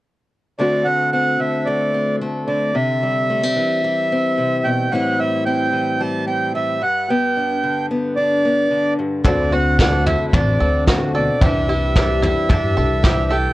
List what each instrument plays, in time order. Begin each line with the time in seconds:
0.58 steel-string acoustic guitar D2 D3 A3 C4 F#4, accordion D5
0.85 steel-string acoustic guitar A3, accordion F#5
1.12 steel-string acoustic guitar C4, accordion F#5
1.40 steel-string acoustic guitar D3, accordion E5
1.65 steel-string acoustic guitar A3, accordion D5
1.94 steel-string acoustic guitar C4
2.21 steel-string acoustic guitar A3
2.47 steel-string acoustic guitar D3, accordion D5
2.75 steel-string acoustic guitar C3, accordion E5
3.03 steel-string acoustic guitar G3
3.30 steel-string acoustic guitar A3
3.43 steel-string acoustic guitar C4
3.56 steel-string acoustic guitar E3
3.84 steel-string acoustic guitar G3
4.12 steel-string acoustic guitar C4
4.38 steel-string acoustic guitar C3
4.64 steel-string acoustic guitar B2, accordion G5
4.92 steel-string acoustic guitar A2 E3 G3 C4 E4, accordion F#5
5.19 steel-string acoustic guitar G3, accordion E5
5.45 steel-string acoustic guitar C4, accordion G5
5.73 steel-string acoustic guitar E3
6.00 steel-string acoustic guitar G3, accordion A5
6.27 steel-string acoustic guitar C4, accordion G5
6.55 steel-string acoustic guitar G3, accordion E5
6.82 steel-string acoustic guitar G2, accordion F#5
7.09 steel-string acoustic guitar B3, accordion G5
7.37 steel-string acoustic guitar D4
7.63 steel-string acoustic guitar D3
7.91 steel-string acoustic guitar B3
8.16 steel-string acoustic guitar D4, accordion D5
8.45 steel-string acoustic guitar B3
8.71 steel-string acoustic guitar D3
8.99 steel-string acoustic guitar G2
9.24 upright bass D2, steel-string acoustic guitar D2 D3 C4 D4, twelve-string acoustic guitar D3 A3 C4 F#4, five-string banjo A4, accordion D5, kick, floor tom
9.28 steel-string acoustic guitar F#4
9.51 twelve-string acoustic guitar A3 C4 F#4, steel-string acoustic guitar C4, five-string banjo F#4, accordion F#5
9.78 twelve-string acoustic guitar D3 A3 C4 F#4, five-string banjo D4, steel-string acoustic guitar D4, accordion F#5, kick, snare
10.06 steel-string acoustic guitar D3, five-string banjo E4, accordion E5, floor tom
10.27 accordion E5
10.32 upright bass A1, twelve-string acoustic guitar D3 A3 C4 F#4, steel-string acoustic guitar C4, five-string banjo D4, accordion D5, kick, floor tom
10.59 upright bass D2, twelve-string acoustic guitar A3 C4 F#4, steel-string acoustic guitar D4, five-string banjo A4
10.86 steel-string acoustic guitar A2, twelve-string acoustic guitar D3 A3 C4 F#4, five-string banjo F#4, kick, snare
11.14 steel-string acoustic guitar B2, twelve-string acoustic guitar A3 C4 F#4, five-string banjo A4, accordion D5
11.41 upright bass C2, twelve-string acoustic guitar C3 E3 G3 D4 G4, steel-string acoustic guitar C3 E3 G3 D4, five-string banjo G4, accordion E5, kick, floor tom
11.46 steel-string acoustic guitar E4
11.68 steel-string acoustic guitar G3, twelve-string acoustic guitar G3 D4 G4, five-string banjo E4
11.95 twelve-string acoustic guitar C3 E3 G3 D4 G4, five-string banjo D4, steel-string acoustic guitar D4, kick, snare
12.22 steel-string acoustic guitar E3, five-string banjo E4, floor tom
12.49 upright bass G2, twelve-string acoustic guitar E3 G3 D4 G4, steel-string acoustic guitar G3, five-string banjo D4, kick, floor tom
12.75 upright bass C2, twelve-string acoustic guitar G3 D4 G4, five-string banjo A4
12.79 steel-string acoustic guitar D4
13.03 twelve-string acoustic guitar C3 E3 G3 D4 G4, steel-string acoustic guitar G3, five-string banjo G4, kick, snare
13.30 steel-string acoustic guitar E3, twelve-string acoustic guitar G3 D4 G4, five-string banjo A4, accordion G5